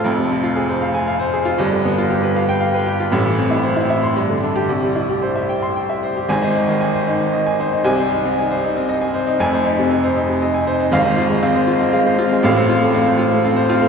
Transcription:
grand piano
0.04 F1 F2
0.18 C3
0.31 C4
0.43 F4
0.56 G#4
0.69 C5
0.82 F5
0.94 G#5
1.07 F5
1.20 C5
1.33 G#4
1.45 F4
1.58 G1 G2
1.72 D3
1.85 B3
1.98 F4
2.11 G4
2.23 B4
2.36 F5
2.49 G5
2.61 F5
2.74 B4
2.87 G4
3.00 F4
3.12 A1 A2
3.26 E3
3.38 C4
3.51 E4
3.63 C5
3.76 E4
3.90 E5
4.03 C6
4.16 G2
4.29 D3
4.43 D4
4.56 G4
4.69 C2 C3
4.83 G3
4.96 E4
5.10 G4
5.22 C5
5.36 E5
5.49 G5
5.62 C6
5.76 G5
5.89 E5
6.03 C5
6.17 G4
6.29 G#1 G#2 G#5
6.43 D#4 C5
6.55 D#4
6.68 D#3
6.81 D#4 G#5
6.94 C5
7.07 D#4
7.21 D#3
7.34 D#4 D#5
7.46 G#5
7.60 D#4 C5
7.73 D#4
7.84 C2 C3 G#5
7.99 D#4 C5
8.12 D#4
8.25 C4
8.38 D#4 G#5
8.51 C5
8.63 D#4
8.76 C4
8.89 D#4 D#5
9.01 G#5
9.14 D#4 C5
9.27 D#4
9.39 F1 F2 G#5
9.53 D#4 C5
9.65 D#4
9.78 C3
9.90 D#4 G#5
10.03 C5
10.16 D#4
10.29 C3
10.42 D#4 D#5
10.54 G#5
10.67 D#4 C5
10.80 D#4
10.92 G#1 G#2 F5
11.05 C4 C5
11.17 F4
11.30 G#3
11.43 C4 F5
11.55 C5
11.67 F4
11.81 G#3 C4
11.93 G#3 F5
12.07 C5
12.19 C4 F4
12.32 G#3
12.43 A1 A2 F5
12.56 C4 C5
12.69 F4
12.82 A3
12.94 C4 F5
13.06 C5
13.19 F4
13.32 A3
13.45 C4 F5
13.56 C5
13.69 C4 F4
13.81 A3

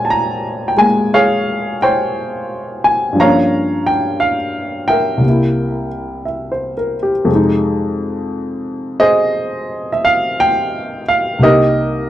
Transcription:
grand piano
Already playing: A#2 G#3 C#4 C5 C#5 G5 G#5
0.05 A5
0.10 A#5
0.68 G5
0.77 G#3 A#3 G#5
1.14 G#4 C#5 F5
1.82 C5 C#5 G5
2.84 G#5
3.13 G2 F3
3.20 A#3 C#4 C#5 F5 A#5
3.87 G5
4.20 F5
4.88 A#4 E5 G5
5.17 C2 C3
5.25 A#3 E4
6.25 E5
6.52 C5
6.77 A#4
7.03 G4
7.25 F2 C3
7.32 G#3 D#4
9.00 G#4 C5 D#5
9.92 E5
10.05 F5
10.40 G5
11.08 F5
11.39 C2 C3 A#3 G4 A#4
11.43 D#4 D#5

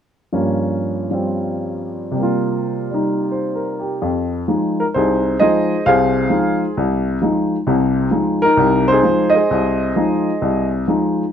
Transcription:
upright piano
0.33 G2 F3 A#3 C#4
1.11 F3 G3 C4
2.11 C3 G3
2.19 A#3 F4
2.91 G3 D#4
3.32 C5
3.56 A#4
3.80 G4
4.02 F2
4.48 F3 G#3 D#4
4.80 A#4
4.94 C2 D#4 G#4 C5
5.40 F3 G#3 D#4 G#4 C5 D#5
5.86 C2 C3 G#4 C5 F5
6.30 F3 G#3 D#4
6.77 C2
7.22 F3 G#3 D#4
7.67 C2 C3
8.11 F3 G#3 D#4
8.42 D#4 A#4
8.57 C2 C3
8.88 D#4 C5
8.92 G#4
9.03 F3 G#3 D#4
9.30 D#5
9.35 G#4 C5
9.51 C2
9.96 F3 G#3 D#4
10.42 C2
10.88 F3 G#3 D#4

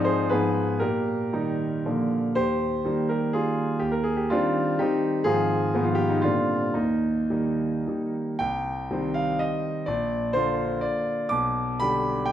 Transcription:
grand piano
Already playing: G#2 F3 C4 D#4 G#4 D5
0.04 G#4 C5
0.29 G#2 F3 B3 D#4 G#4 B4
0.79 A#2 G4 A#4
1.33 D#3 G3 D#4
1.85 A#2 D3 F3 A#3
2.35 D#2 G4 C5
2.85 D#3 G3 A#3
3.09 G4 A#4
3.33 D#3 G3 A#3 F4 G#4
3.79 D#2 G4
3.92 A#4
4.03 G#4
4.17 G4
4.30 D#3 G3 C4 D4 F4
4.79 D#3 G3 C4 D#4 G4
5.24 G#2 D#3 F3 C4 F4 G#4
5.74 G#2 D#3 F3 B3
5.84 F4
5.95 G4
6.09 D#4
6.22 A#2 D3 G3 C4 D4 F4
6.74 D#2 A#3 D#4
7.30 D#3 G3 A#3
7.87 D#3 G3 A#3
8.39 C2 G5
8.91 D#3 G3 C4
9.14 F5
9.39 D#5
9.86 A#1 D5
10.33 D3 A#3 F4 C5
10.81 D5
11.29 B1 D6
11.80 D3 G3 G4 B5
12.26 G5

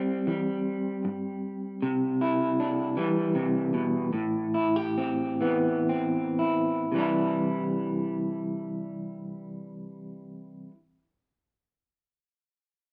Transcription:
clean electric guitar
Already playing: C3 G3 C4
0.27 E3 G3
1.05 G2
1.82 C3
2.21 E4
2.60 D4
2.97 E3 G3
3.35 C3
3.74 B2
4.13 A2
4.54 E4
4.76 G4
4.98 C4
5.41 E3 B3
5.89 C4
6.39 E4
6.92 C3 E3 G3
6.98 D4 E4

